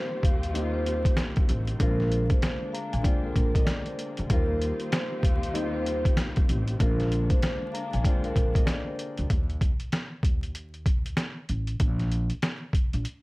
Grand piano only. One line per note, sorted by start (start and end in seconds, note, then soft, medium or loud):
0.00 0.20 D#3 medium
0.00 0.20 G3 medium
0.00 0.21 A#3 medium
0.00 0.21 C4 medium
0.00 0.21 F4 loud
0.53 1.44 D#3 medium
0.53 1.44 G3 medium
0.53 1.45 A#3 medium
0.53 1.45 C4 medium
0.53 0.64 D#4 medium
0.63 1.49 F4 loud
1.79 2.69 D3 medium
1.79 2.70 G#3 medium
1.79 2.70 A#3 medium
1.79 2.71 C4 medium
1.79 2.71 F4 loud
2.73 2.91 A#5 medium
2.93 3.04 G#5 medium
3.03 3.94 D3 medium
3.03 3.94 G#3 medium
3.03 3.95 A#3 medium
3.03 3.95 C4 medium
3.03 3.96 F4 loud
3.03 3.23 G5 medium
3.25 3.53 F5 medium
3.54 3.66 D#5 medium
3.65 3.84 D5 medium
3.87 4.27 C5 medium
4.29 5.20 D#3 medium
4.29 5.20 G3 medium
4.29 5.20 A#3 medium
4.29 5.21 C4 medium
4.29 5.21 F4 loud
5.53 6.44 D#3 medium
5.53 6.44 G3 medium
5.53 6.45 A#3 medium
5.53 6.45 C4 medium
5.53 5.64 D#4 medium
5.63 6.49 F4 loud
6.79 7.70 D3 medium
6.79 7.70 G#3 medium
6.79 7.70 A#3 medium
6.79 7.71 C4 medium
6.79 7.71 F4 loud
7.74 7.92 A#5 medium
7.93 8.04 G#5 medium
8.03 8.94 D3 medium
8.03 8.95 G#3 medium
8.03 8.95 A#3 medium
8.03 8.96 C4 medium
8.03 8.96 F4 loud
8.03 8.23 G5 medium
8.25 8.54 F5 medium
8.55 8.66 D#5 medium
8.65 8.84 D5 medium
8.87 9.27 C5 medium